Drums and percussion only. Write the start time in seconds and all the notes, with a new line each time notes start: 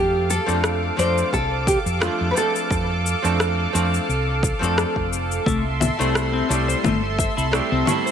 0.30 cabasa
0.49 cabasa
0.64 cross-stick, cabasa
0.99 cabasa
1.18 cabasa
1.33 kick, cabasa
1.67 kick, cabasa
1.86 cabasa
2.02 cross-stick, cabasa
2.37 cabasa
2.56 cabasa
2.71 kick, cabasa
3.06 cabasa
3.25 cabasa
3.40 cross-stick, cabasa
3.75 cabasa
3.94 cabasa
4.10 cabasa
4.43 kick, cabasa
4.63 cabasa
4.78 cross-stick, cabasa
4.96 kick
5.13 cabasa
5.32 cabasa
5.46 kick, cabasa
5.81 low conga, cabasa
6.01 cabasa
6.15 cross-stick, cabasa
6.51 cabasa
6.69 cabasa
6.84 kick, low conga, cabasa
7.19 kick, cabasa
7.38 cabasa
7.53 cross-stick, cabasa
7.87 low conga, cabasa
8.07 cabasa